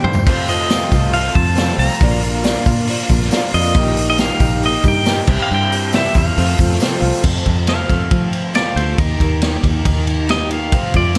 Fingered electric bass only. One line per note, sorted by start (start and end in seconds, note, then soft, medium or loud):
0.04 0.27 G2 loud
0.27 0.82 F2 loud
0.92 1.28 C2 medium
1.35 1.72 F2 loud
1.78 1.88 C2 medium
2.01 2.56 A#1 medium
2.66 3.03 A#2 medium
3.10 3.28 A#1 loud
3.54 3.77 F2 loud
3.75 4.30 A#1 loud
4.40 4.77 A#1 medium
4.84 5.20 G2 loud
5.28 5.37 C2 loud
5.51 6.05 G2 loud
6.15 6.33 E2 medium
6.38 6.55 F2 loud
6.59 6.77 F2 medium
7.02 7.11 C2 medium
7.24 7.42 F2 medium
7.47 7.83 F2 medium
7.90 8.08 F2 medium
8.11 8.66 F3 medium
8.76 8.94 D2 medium
8.98 9.16 D#2 loud
9.20 9.56 D#2 medium
9.63 9.82 D#2 medium
9.86 10.73 D#2 medium
10.73 10.91 F2 loud
10.95 11.18 F2 medium